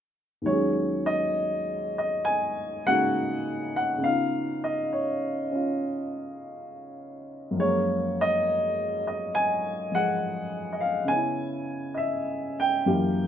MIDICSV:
0, 0, Header, 1, 2, 480
1, 0, Start_track
1, 0, Key_signature, -6, "minor"
1, 0, Tempo, 895522
1, 248, Time_signature, 4, 2, 24, 8
1, 1688, Tempo, 883652
1, 7187, End_track
2, 0, Start_track
2, 0, Title_t, "Upright piano"
2, 0, Program_c, 0, 0
2, 224, Note_on_c, 0, 39, 35
2, 235, Note_on_c, 0, 51, 35
2, 246, Note_on_c, 0, 54, 32
2, 246, Note_on_c, 0, 73, 78
2, 260, Note_on_c, 0, 56, 34
2, 271, Note_on_c, 0, 61, 34
2, 284, Note_on_c, 0, 68, 39
2, 344, Control_c, 0, 64, 127
2, 557, Note_off_c, 0, 73, 0
2, 569, Note_on_c, 0, 75, 89
2, 1035, Note_off_c, 0, 75, 0
2, 1063, Note_on_c, 0, 75, 74
2, 1201, Note_off_c, 0, 75, 0
2, 1205, Note_on_c, 0, 80, 91
2, 1279, Note_off_c, 0, 80, 0
2, 1530, Note_off_c, 0, 56, 0
2, 1535, Note_on_c, 0, 49, 37
2, 1536, Note_on_c, 0, 78, 101
2, 1538, Note_on_c, 0, 56, 38
2, 1539, Note_on_c, 0, 58, 36
2, 1546, Note_on_c, 0, 63, 34
2, 1551, Note_on_c, 0, 66, 44
2, 1996, Note_off_c, 0, 78, 0
2, 2021, Note_on_c, 0, 78, 80
2, 2129, Note_off_c, 0, 49, 0
2, 2137, Note_on_c, 0, 49, 44
2, 2156, Note_off_c, 0, 39, 0
2, 2158, Note_on_c, 0, 59, 40
2, 2159, Note_off_c, 0, 78, 0
2, 2162, Note_off_c, 0, 51, 0
2, 2167, Note_off_c, 0, 54, 0
2, 2168, Note_off_c, 0, 56, 0
2, 2168, Note_off_c, 0, 58, 0
2, 2170, Note_off_c, 0, 63, 0
2, 2170, Note_on_c, 0, 77, 88
2, 2174, Note_off_c, 0, 66, 0
2, 2175, Control_c, 0, 64, 0
2, 2178, Note_on_c, 0, 63, 40
2, 2180, Note_off_c, 0, 61, 0
2, 2187, Note_off_c, 0, 68, 0
2, 2195, Note_on_c, 0, 65, 47
2, 2257, Control_c, 0, 64, 127
2, 2497, Note_on_c, 0, 75, 74
2, 2510, Note_off_c, 0, 77, 0
2, 2531, Note_off_c, 0, 75, 0
2, 2653, Note_on_c, 0, 73, 62
2, 2974, Note_on_c, 0, 61, 40
2, 2983, Note_off_c, 0, 65, 0
2, 2991, Note_on_c, 0, 65, 44
2, 3590, Note_off_c, 0, 73, 0
2, 4055, Note_on_c, 0, 42, 47
2, 4073, Note_off_c, 0, 49, 0
2, 4076, Note_on_c, 0, 53, 43
2, 4084, Note_off_c, 0, 59, 0
2, 4085, Note_off_c, 0, 61, 0
2, 4094, Note_off_c, 0, 63, 0
2, 4094, Note_off_c, 0, 65, 0
2, 4097, Control_c, 0, 64, 0
2, 4099, Note_on_c, 0, 56, 44
2, 4105, Note_on_c, 0, 73, 88
2, 4117, Note_on_c, 0, 58, 51
2, 4185, Control_c, 0, 64, 127
2, 4404, Note_off_c, 0, 73, 0
2, 4438, Note_on_c, 0, 75, 99
2, 4882, Note_off_c, 0, 75, 0
2, 4906, Note_on_c, 0, 75, 75
2, 5054, Note_off_c, 0, 75, 0
2, 5055, Note_on_c, 0, 80, 96
2, 5128, Note_off_c, 0, 80, 0
2, 5356, Note_off_c, 0, 53, 0
2, 5364, Note_on_c, 0, 53, 39
2, 5373, Note_off_c, 0, 56, 0
2, 5381, Note_on_c, 0, 78, 88
2, 5382, Note_on_c, 0, 56, 40
2, 5784, Note_off_c, 0, 78, 0
2, 5803, Note_on_c, 0, 75, 58
2, 5848, Note_on_c, 0, 77, 78
2, 5855, Note_off_c, 0, 75, 0
2, 5882, Note_off_c, 0, 77, 0
2, 5976, Note_on_c, 0, 49, 43
2, 5987, Note_off_c, 0, 42, 0
2, 5994, Note_on_c, 0, 59, 41
2, 5997, Note_on_c, 0, 80, 90
2, 5999, Note_off_c, 0, 53, 0
2, 6008, Note_off_c, 0, 56, 0
2, 6011, Control_c, 0, 64, 0
2, 6015, Note_on_c, 0, 61, 41
2, 6018, Note_off_c, 0, 58, 0
2, 6035, Note_on_c, 0, 64, 49
2, 6097, Control_c, 0, 64, 127
2, 6437, Note_off_c, 0, 80, 0
2, 6465, Note_on_c, 0, 75, 51
2, 6482, Note_on_c, 0, 76, 71
2, 6487, Note_off_c, 0, 75, 0
2, 6820, Note_on_c, 0, 79, 85
2, 6827, Note_off_c, 0, 76, 0
2, 6955, Note_off_c, 0, 49, 0
2, 6962, Note_on_c, 0, 42, 52
2, 6963, Note_on_c, 0, 52, 45
2, 6964, Note_off_c, 0, 59, 0
2, 6967, Note_on_c, 0, 58, 43
2, 6968, Note_on_c, 0, 67, 55
2, 6975, Note_off_c, 0, 61, 0
2, 6976, Control_c, 0, 64, 0
2, 6984, Note_off_c, 0, 64, 0
2, 7080, Control_c, 0, 64, 127
2, 7187, Note_off_c, 0, 42, 0
2, 7187, Note_off_c, 0, 52, 0
2, 7187, Note_off_c, 0, 58, 0
2, 7187, Note_off_c, 0, 67, 0
2, 7187, Note_off_c, 0, 79, 0
2, 7187, End_track
0, 0, End_of_file